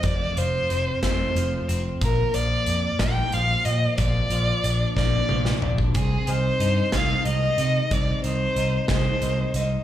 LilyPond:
<<
  \new Staff \with { instrumentName = "Violin" } { \time 6/8 \key bes \major \tempo 4. = 61 d''8 c''4 c''4 r8 | bes'8 d''4 g''8 f''8 ees''8 | d''4. d''4 r8 | aes'8 c''4 f''8 ees''4 |
d''8 c''4 c''4 r8 | }
  \new Staff \with { instrumentName = "Clean electric guitar" } { \clef bass \time 6/8 \key bes \major <f, f a c'>8 f8 c'8 a8 f8 c'8 | bes,8 f4 bes8 f4 | bes,8 f8 d'8 bes8 f8 d'8 | c8 ees8 ees'8 aes8 ees8 ees'8 |
c8 ees8 ees'8 aes8 ees8 ees'8 | }
  \new Staff \with { instrumentName = "Picked electric bass" } { \clef bass \time 6/8 \key bes \major f,,8 f,,8 f,,8 f,,8 f,,8 f,,8 | bes,,8 bes,,8 f,8 bes,,8 bes,,8 bes,8 | bes,,8 bes,,8 bes,,8 bes,,8 bes,,8 bes,,8 | c,8 c,8 g,8 c,8 c,8 c8 |
c,8 c,8 c,8 c,8 c,8 c,8 | }
  \new DrumStaff \with { instrumentName = "Drums" } \drummode { \time 6/8 <hh bd>8 hh8 hh8 <hh bd sn>8 hh8 hh8 | <hh bd>8 hh8 hh8 <hh bd sn>8 hh8 hh8 | <hh bd>8 hh8 hh8 <bd sn>8 toml16 sn16 tomfh16 bd16 | <hh bd>8 hh8 hh8 <hh bd sn>8 hh8 hh8 |
<hh bd>8 hh8 hh8 <hh bd sn>8 hh8 hh8 | }
>>